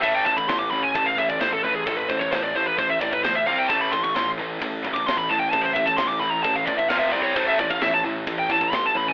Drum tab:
HH |o---o---o---o---|o---o---o---o---|o---o---o---o---|o---o---o---o---|
SD |----o-------o---|----o-------o---|----o-------o---|----o-------o---|
BD |o-oo----o-oo----|o-oo----o-oo----|o-oo----o-oo----|o-oo----o-oo----|

HH |o---o---o---o---|
SD |----o-------o---|
BD |o-oo----o-oo----|